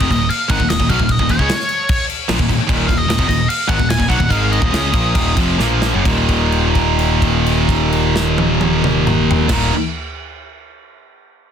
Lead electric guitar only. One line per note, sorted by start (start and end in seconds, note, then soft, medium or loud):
0.11 0.30 D#5 medium
0.30 0.50 F5 loud
0.50 0.69 F#5 loud
0.69 0.89 D#5 loud
0.89 1.11 F5 loud
1.11 1.31 D#5 loud
1.31 2.05 C#5 medium
2.87 2.98 F5 medium
2.98 3.26 D#5 loud
3.28 3.48 D#5 medium
3.49 3.68 F5 loud
3.68 3.89 F#5 medium
3.89 4.09 G#5 loud
4.09 4.30 F#5 loud
4.30 4.52 F5 loud
4.52 5.38 D#5 medium